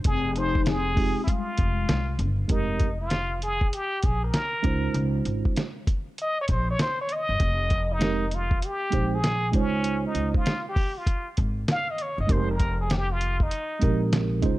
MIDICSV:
0, 0, Header, 1, 6, 480
1, 0, Start_track
1, 0, Key_signature, -4, "minor"
1, 0, Tempo, 612245
1, 40, Time_signature, 4, 2, 24, 8
1, 11436, End_track
2, 0, Start_track
2, 0, Title_t, "Muted trumpet"
2, 0, Program_c, 0, 59
2, 54, Note_on_c, 0, 68, 97
2, 295, Note_on_c, 0, 72, 102
2, 307, Note_off_c, 0, 68, 0
2, 531, Note_on_c, 0, 68, 99
2, 543, Note_off_c, 0, 72, 0
2, 965, Note_off_c, 0, 68, 0
2, 969, Note_on_c, 0, 64, 52
2, 1013, Note_on_c, 0, 65, 77
2, 1025, Note_off_c, 0, 64, 0
2, 1726, Note_off_c, 0, 65, 0
2, 1972, Note_on_c, 0, 63, 74
2, 2331, Note_off_c, 0, 63, 0
2, 2358, Note_on_c, 0, 65, 90
2, 2660, Note_off_c, 0, 65, 0
2, 2688, Note_on_c, 0, 68, 93
2, 2933, Note_on_c, 0, 67, 104
2, 2945, Note_off_c, 0, 68, 0
2, 3175, Note_on_c, 0, 68, 93
2, 3187, Note_off_c, 0, 67, 0
2, 3320, Note_off_c, 0, 68, 0
2, 3325, Note_on_c, 0, 70, 90
2, 4007, Note_off_c, 0, 70, 0
2, 4874, Note_on_c, 0, 75, 107
2, 5000, Note_off_c, 0, 75, 0
2, 5027, Note_on_c, 0, 73, 87
2, 5059, Note_off_c, 0, 73, 0
2, 5107, Note_on_c, 0, 72, 97
2, 5236, Note_off_c, 0, 72, 0
2, 5256, Note_on_c, 0, 73, 96
2, 5327, Note_off_c, 0, 73, 0
2, 5344, Note_on_c, 0, 72, 107
2, 5474, Note_off_c, 0, 72, 0
2, 5497, Note_on_c, 0, 73, 103
2, 5584, Note_on_c, 0, 75, 108
2, 5596, Note_off_c, 0, 73, 0
2, 6214, Note_on_c, 0, 63, 91
2, 6225, Note_off_c, 0, 75, 0
2, 6546, Note_on_c, 0, 65, 88
2, 6558, Note_off_c, 0, 63, 0
2, 6781, Note_on_c, 0, 67, 102
2, 6793, Note_off_c, 0, 65, 0
2, 7170, Note_on_c, 0, 68, 93
2, 7181, Note_off_c, 0, 67, 0
2, 7496, Note_on_c, 0, 61, 90
2, 7507, Note_off_c, 0, 68, 0
2, 7880, Note_off_c, 0, 61, 0
2, 7892, Note_on_c, 0, 63, 72
2, 8106, Note_off_c, 0, 63, 0
2, 8126, Note_on_c, 0, 65, 82
2, 8343, Note_off_c, 0, 65, 0
2, 8377, Note_on_c, 0, 67, 83
2, 8605, Note_on_c, 0, 65, 64
2, 8617, Note_off_c, 0, 67, 0
2, 8839, Note_off_c, 0, 65, 0
2, 9188, Note_on_c, 0, 77, 113
2, 9334, Note_on_c, 0, 75, 101
2, 9346, Note_off_c, 0, 77, 0
2, 9422, Note_on_c, 0, 73, 91
2, 9434, Note_off_c, 0, 75, 0
2, 9563, Note_off_c, 0, 73, 0
2, 9569, Note_on_c, 0, 75, 87
2, 9658, Note_on_c, 0, 72, 87
2, 9669, Note_off_c, 0, 75, 0
2, 9801, Note_off_c, 0, 72, 0
2, 9809, Note_on_c, 0, 70, 80
2, 10024, Note_off_c, 0, 70, 0
2, 10043, Note_on_c, 0, 68, 87
2, 10130, Note_on_c, 0, 67, 94
2, 10142, Note_off_c, 0, 68, 0
2, 10287, Note_on_c, 0, 65, 84
2, 10299, Note_off_c, 0, 67, 0
2, 10527, Note_on_c, 0, 63, 69
2, 10539, Note_off_c, 0, 65, 0
2, 11000, Note_off_c, 0, 63, 0
2, 11436, End_track
3, 0, Start_track
3, 0, Title_t, "Tine electric piano"
3, 0, Program_c, 1, 4
3, 746, Note_on_c, 1, 56, 61
3, 754, Note_on_c, 1, 60, 62
3, 760, Note_on_c, 1, 63, 58
3, 766, Note_on_c, 1, 65, 52
3, 773, Note_on_c, 1, 67, 61
3, 940, Note_off_c, 1, 56, 0
3, 944, Note_off_c, 1, 60, 0
3, 947, Note_off_c, 1, 63, 0
3, 950, Note_off_c, 1, 65, 0
3, 954, Note_off_c, 1, 67, 0
3, 1942, Note_on_c, 1, 56, 65
3, 1948, Note_on_c, 1, 60, 52
3, 1956, Note_on_c, 1, 63, 53
3, 1963, Note_on_c, 1, 67, 58
3, 1969, Note_on_c, 1, 70, 68
3, 2252, Note_off_c, 1, 56, 0
3, 2255, Note_off_c, 1, 60, 0
3, 2259, Note_off_c, 1, 63, 0
3, 2262, Note_off_c, 1, 67, 0
3, 2266, Note_off_c, 1, 70, 0
3, 3626, Note_on_c, 1, 56, 74
3, 3630, Note_on_c, 1, 61, 73
3, 3639, Note_on_c, 1, 63, 72
3, 3645, Note_on_c, 1, 65, 66
3, 3655, Note_on_c, 1, 72, 82
3, 4414, Note_off_c, 1, 56, 0
3, 4416, Note_off_c, 1, 61, 0
3, 4420, Note_off_c, 1, 63, 0
3, 4423, Note_off_c, 1, 65, 0
3, 4428, Note_off_c, 1, 72, 0
3, 6267, Note_on_c, 1, 56, 74
3, 6272, Note_on_c, 1, 60, 61
3, 6279, Note_on_c, 1, 63, 66
3, 6290, Note_on_c, 1, 67, 60
3, 6296, Note_on_c, 1, 70, 79
3, 6461, Note_off_c, 1, 56, 0
3, 6464, Note_off_c, 1, 60, 0
3, 6467, Note_off_c, 1, 63, 0
3, 6472, Note_off_c, 1, 67, 0
3, 6475, Note_off_c, 1, 70, 0
3, 6979, Note_on_c, 1, 56, 62
3, 6986, Note_on_c, 1, 60, 52
3, 6993, Note_on_c, 1, 63, 57
3, 7000, Note_on_c, 1, 67, 54
3, 7010, Note_on_c, 1, 72, 78
3, 7177, Note_off_c, 1, 56, 0
3, 7180, Note_off_c, 1, 60, 0
3, 7184, Note_off_c, 1, 63, 0
3, 7187, Note_off_c, 1, 67, 0
3, 7192, Note_off_c, 1, 72, 0
3, 7465, Note_on_c, 1, 56, 83
3, 7472, Note_on_c, 1, 61, 71
3, 7478, Note_on_c, 1, 63, 69
3, 7485, Note_on_c, 1, 65, 68
3, 7491, Note_on_c, 1, 72, 84
3, 8254, Note_off_c, 1, 56, 0
3, 8257, Note_off_c, 1, 61, 0
3, 8260, Note_off_c, 1, 63, 0
3, 8263, Note_off_c, 1, 65, 0
3, 8266, Note_off_c, 1, 72, 0
3, 9618, Note_on_c, 1, 56, 61
3, 9623, Note_on_c, 1, 60, 54
3, 9632, Note_on_c, 1, 63, 51
3, 9637, Note_on_c, 1, 67, 52
3, 9644, Note_on_c, 1, 70, 71
3, 9816, Note_off_c, 1, 56, 0
3, 9819, Note_off_c, 1, 60, 0
3, 9823, Note_off_c, 1, 63, 0
3, 9826, Note_off_c, 1, 67, 0
3, 9829, Note_off_c, 1, 70, 0
3, 10816, Note_on_c, 1, 56, 66
3, 10823, Note_on_c, 1, 60, 63
3, 10831, Note_on_c, 1, 63, 50
3, 10838, Note_on_c, 1, 67, 53
3, 10845, Note_on_c, 1, 70, 73
3, 11297, Note_off_c, 1, 56, 0
3, 11306, Note_on_c, 1, 56, 97
3, 11308, Note_off_c, 1, 63, 0
3, 11312, Note_off_c, 1, 60, 0
3, 11314, Note_on_c, 1, 61, 86
3, 11317, Note_on_c, 1, 63, 82
3, 11319, Note_off_c, 1, 67, 0
3, 11322, Note_off_c, 1, 70, 0
3, 11326, Note_on_c, 1, 65, 85
3, 11334, Note_on_c, 1, 72, 95
3, 11436, Note_off_c, 1, 56, 0
3, 11436, Note_off_c, 1, 61, 0
3, 11436, Note_off_c, 1, 63, 0
3, 11436, Note_off_c, 1, 65, 0
3, 11436, Note_off_c, 1, 72, 0
3, 11436, End_track
4, 0, Start_track
4, 0, Title_t, "Vibraphone"
4, 0, Program_c, 2, 11
4, 46, Note_on_c, 2, 60, 82
4, 266, Note_off_c, 2, 60, 0
4, 284, Note_on_c, 2, 63, 94
4, 522, Note_off_c, 2, 63, 0
4, 531, Note_on_c, 2, 60, 84
4, 960, Note_on_c, 2, 55, 55
4, 965, Note_off_c, 2, 60, 0
4, 997, Note_off_c, 2, 55, 0
4, 998, Note_on_c, 2, 56, 66
4, 1719, Note_off_c, 2, 56, 0
4, 11436, End_track
5, 0, Start_track
5, 0, Title_t, "Upright bass"
5, 0, Program_c, 3, 32
5, 38, Note_on_c, 3, 29, 102
5, 880, Note_off_c, 3, 29, 0
5, 1243, Note_on_c, 3, 29, 87
5, 1434, Note_off_c, 3, 29, 0
5, 1479, Note_on_c, 3, 36, 78
5, 1716, Note_on_c, 3, 31, 93
5, 1728, Note_off_c, 3, 36, 0
5, 1910, Note_off_c, 3, 31, 0
5, 1957, Note_on_c, 3, 29, 100
5, 2887, Note_off_c, 3, 29, 0
5, 3164, Note_on_c, 3, 34, 86
5, 3355, Note_off_c, 3, 34, 0
5, 3637, Note_on_c, 3, 37, 94
5, 3831, Note_off_c, 3, 37, 0
5, 3875, Note_on_c, 3, 37, 113
5, 4069, Note_off_c, 3, 37, 0
5, 4120, Note_on_c, 3, 32, 89
5, 4242, Note_off_c, 3, 32, 0
5, 5087, Note_on_c, 3, 34, 95
5, 5276, Note_off_c, 3, 34, 0
5, 5715, Note_on_c, 3, 31, 85
5, 5784, Note_off_c, 3, 31, 0
5, 5804, Note_on_c, 3, 29, 106
5, 6730, Note_off_c, 3, 29, 0
5, 7005, Note_on_c, 3, 34, 86
5, 7478, Note_off_c, 3, 34, 0
5, 7478, Note_on_c, 3, 37, 97
5, 7864, Note_off_c, 3, 37, 0
5, 7955, Note_on_c, 3, 37, 86
5, 8079, Note_off_c, 3, 37, 0
5, 8921, Note_on_c, 3, 32, 87
5, 9113, Note_off_c, 3, 32, 0
5, 9550, Note_on_c, 3, 31, 84
5, 9621, Note_off_c, 3, 31, 0
5, 9637, Note_on_c, 3, 29, 105
5, 10567, Note_off_c, 3, 29, 0
5, 10840, Note_on_c, 3, 34, 92
5, 11318, Note_off_c, 3, 34, 0
5, 11318, Note_on_c, 3, 37, 98
5, 11436, Note_off_c, 3, 37, 0
5, 11436, End_track
6, 0, Start_track
6, 0, Title_t, "Drums"
6, 34, Note_on_c, 9, 42, 98
6, 40, Note_on_c, 9, 36, 108
6, 113, Note_off_c, 9, 42, 0
6, 118, Note_off_c, 9, 36, 0
6, 280, Note_on_c, 9, 42, 71
6, 358, Note_off_c, 9, 42, 0
6, 433, Note_on_c, 9, 36, 91
6, 512, Note_off_c, 9, 36, 0
6, 517, Note_on_c, 9, 42, 76
6, 524, Note_on_c, 9, 38, 105
6, 595, Note_off_c, 9, 42, 0
6, 602, Note_off_c, 9, 38, 0
6, 760, Note_on_c, 9, 36, 96
6, 761, Note_on_c, 9, 46, 55
6, 839, Note_off_c, 9, 36, 0
6, 840, Note_off_c, 9, 46, 0
6, 999, Note_on_c, 9, 36, 86
6, 1003, Note_on_c, 9, 42, 96
6, 1078, Note_off_c, 9, 36, 0
6, 1081, Note_off_c, 9, 42, 0
6, 1235, Note_on_c, 9, 42, 79
6, 1244, Note_on_c, 9, 36, 95
6, 1314, Note_off_c, 9, 42, 0
6, 1322, Note_off_c, 9, 36, 0
6, 1480, Note_on_c, 9, 42, 90
6, 1481, Note_on_c, 9, 38, 125
6, 1559, Note_off_c, 9, 42, 0
6, 1560, Note_off_c, 9, 38, 0
6, 1716, Note_on_c, 9, 42, 73
6, 1794, Note_off_c, 9, 42, 0
6, 1952, Note_on_c, 9, 42, 96
6, 1957, Note_on_c, 9, 36, 111
6, 2031, Note_off_c, 9, 42, 0
6, 2036, Note_off_c, 9, 36, 0
6, 2192, Note_on_c, 9, 42, 69
6, 2198, Note_on_c, 9, 36, 97
6, 2270, Note_off_c, 9, 42, 0
6, 2276, Note_off_c, 9, 36, 0
6, 2432, Note_on_c, 9, 42, 78
6, 2440, Note_on_c, 9, 38, 90
6, 2511, Note_off_c, 9, 42, 0
6, 2518, Note_off_c, 9, 38, 0
6, 2681, Note_on_c, 9, 42, 73
6, 2759, Note_off_c, 9, 42, 0
6, 2832, Note_on_c, 9, 36, 88
6, 2910, Note_off_c, 9, 36, 0
6, 2924, Note_on_c, 9, 42, 88
6, 3002, Note_off_c, 9, 42, 0
6, 3156, Note_on_c, 9, 42, 77
6, 3164, Note_on_c, 9, 36, 88
6, 3234, Note_off_c, 9, 42, 0
6, 3243, Note_off_c, 9, 36, 0
6, 3399, Note_on_c, 9, 42, 89
6, 3400, Note_on_c, 9, 38, 106
6, 3478, Note_off_c, 9, 42, 0
6, 3479, Note_off_c, 9, 38, 0
6, 3635, Note_on_c, 9, 42, 60
6, 3640, Note_on_c, 9, 36, 101
6, 3714, Note_off_c, 9, 42, 0
6, 3718, Note_off_c, 9, 36, 0
6, 3876, Note_on_c, 9, 42, 101
6, 3955, Note_off_c, 9, 42, 0
6, 4119, Note_on_c, 9, 42, 67
6, 4197, Note_off_c, 9, 42, 0
6, 4275, Note_on_c, 9, 36, 84
6, 4353, Note_off_c, 9, 36, 0
6, 4362, Note_on_c, 9, 42, 86
6, 4370, Note_on_c, 9, 38, 100
6, 4441, Note_off_c, 9, 42, 0
6, 4448, Note_off_c, 9, 38, 0
6, 4604, Note_on_c, 9, 36, 89
6, 4605, Note_on_c, 9, 42, 71
6, 4682, Note_off_c, 9, 36, 0
6, 4684, Note_off_c, 9, 42, 0
6, 4846, Note_on_c, 9, 42, 86
6, 4925, Note_off_c, 9, 42, 0
6, 5079, Note_on_c, 9, 42, 80
6, 5087, Note_on_c, 9, 36, 85
6, 5157, Note_off_c, 9, 42, 0
6, 5166, Note_off_c, 9, 36, 0
6, 5325, Note_on_c, 9, 42, 81
6, 5326, Note_on_c, 9, 38, 107
6, 5404, Note_off_c, 9, 42, 0
6, 5405, Note_off_c, 9, 38, 0
6, 5558, Note_on_c, 9, 42, 65
6, 5636, Note_off_c, 9, 42, 0
6, 5801, Note_on_c, 9, 42, 101
6, 5803, Note_on_c, 9, 36, 114
6, 5879, Note_off_c, 9, 42, 0
6, 5881, Note_off_c, 9, 36, 0
6, 6038, Note_on_c, 9, 42, 68
6, 6044, Note_on_c, 9, 36, 85
6, 6117, Note_off_c, 9, 42, 0
6, 6122, Note_off_c, 9, 36, 0
6, 6278, Note_on_c, 9, 42, 84
6, 6286, Note_on_c, 9, 38, 110
6, 6357, Note_off_c, 9, 42, 0
6, 6364, Note_off_c, 9, 38, 0
6, 6519, Note_on_c, 9, 42, 74
6, 6597, Note_off_c, 9, 42, 0
6, 6672, Note_on_c, 9, 36, 93
6, 6750, Note_off_c, 9, 36, 0
6, 6761, Note_on_c, 9, 42, 95
6, 6840, Note_off_c, 9, 42, 0
6, 6994, Note_on_c, 9, 42, 84
6, 7004, Note_on_c, 9, 36, 81
6, 7073, Note_off_c, 9, 42, 0
6, 7082, Note_off_c, 9, 36, 0
6, 7242, Note_on_c, 9, 42, 92
6, 7243, Note_on_c, 9, 38, 120
6, 7320, Note_off_c, 9, 42, 0
6, 7321, Note_off_c, 9, 38, 0
6, 7474, Note_on_c, 9, 42, 71
6, 7479, Note_on_c, 9, 36, 103
6, 7553, Note_off_c, 9, 42, 0
6, 7557, Note_off_c, 9, 36, 0
6, 7715, Note_on_c, 9, 42, 97
6, 7794, Note_off_c, 9, 42, 0
6, 7956, Note_on_c, 9, 42, 77
6, 8034, Note_off_c, 9, 42, 0
6, 8110, Note_on_c, 9, 36, 87
6, 8188, Note_off_c, 9, 36, 0
6, 8199, Note_on_c, 9, 42, 75
6, 8207, Note_on_c, 9, 38, 103
6, 8277, Note_off_c, 9, 42, 0
6, 8285, Note_off_c, 9, 38, 0
6, 8438, Note_on_c, 9, 36, 97
6, 8442, Note_on_c, 9, 46, 54
6, 8516, Note_off_c, 9, 36, 0
6, 8520, Note_off_c, 9, 46, 0
6, 8676, Note_on_c, 9, 36, 96
6, 8678, Note_on_c, 9, 42, 95
6, 8754, Note_off_c, 9, 36, 0
6, 8757, Note_off_c, 9, 42, 0
6, 8915, Note_on_c, 9, 42, 78
6, 8921, Note_on_c, 9, 36, 88
6, 8993, Note_off_c, 9, 42, 0
6, 9000, Note_off_c, 9, 36, 0
6, 9158, Note_on_c, 9, 42, 94
6, 9159, Note_on_c, 9, 38, 116
6, 9237, Note_off_c, 9, 42, 0
6, 9238, Note_off_c, 9, 38, 0
6, 9395, Note_on_c, 9, 42, 69
6, 9473, Note_off_c, 9, 42, 0
6, 9636, Note_on_c, 9, 42, 100
6, 9637, Note_on_c, 9, 36, 117
6, 9714, Note_off_c, 9, 42, 0
6, 9715, Note_off_c, 9, 36, 0
6, 9875, Note_on_c, 9, 42, 85
6, 9878, Note_on_c, 9, 36, 83
6, 9953, Note_off_c, 9, 42, 0
6, 9956, Note_off_c, 9, 36, 0
6, 10113, Note_on_c, 9, 42, 79
6, 10121, Note_on_c, 9, 38, 103
6, 10192, Note_off_c, 9, 42, 0
6, 10199, Note_off_c, 9, 38, 0
6, 10356, Note_on_c, 9, 42, 72
6, 10434, Note_off_c, 9, 42, 0
6, 10506, Note_on_c, 9, 36, 83
6, 10585, Note_off_c, 9, 36, 0
6, 10594, Note_on_c, 9, 42, 88
6, 10672, Note_off_c, 9, 42, 0
6, 10832, Note_on_c, 9, 42, 88
6, 10840, Note_on_c, 9, 36, 93
6, 10910, Note_off_c, 9, 42, 0
6, 10919, Note_off_c, 9, 36, 0
6, 11076, Note_on_c, 9, 42, 90
6, 11077, Note_on_c, 9, 38, 118
6, 11154, Note_off_c, 9, 42, 0
6, 11155, Note_off_c, 9, 38, 0
6, 11309, Note_on_c, 9, 42, 63
6, 11315, Note_on_c, 9, 36, 103
6, 11388, Note_off_c, 9, 42, 0
6, 11394, Note_off_c, 9, 36, 0
6, 11436, End_track
0, 0, End_of_file